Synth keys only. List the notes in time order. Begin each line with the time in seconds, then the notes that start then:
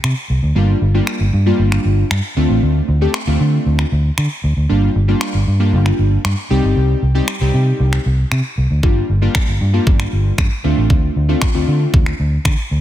0.55 G3 A#3 D4 F4
0.94 G3 A#3 D4 F4
1.46 G3 A#3 D4 F4
2.36 A3 C4 D4 F4
3.01 A3 C4 D4 G4
3.27 A3 C4 D4 F4
4.69 G3 A#3 D4 F4
5.08 G3 A#3 D4 F4
5.60 G3 A#3 D4 F4
6.50 G3 C4 D#4 G4
7.15 G3 C4 D#4 G4
7.41 G3 C4 D#4 G4
8.83 G3 A#3 D4 F4
9.22 G3 A#3 D4 F4
9.73 G3 A#3 D4 F4
10.64 A3 C4 D4 F4
11.29 A3 C4 D4 F4
11.54 A3 C4 D4 F4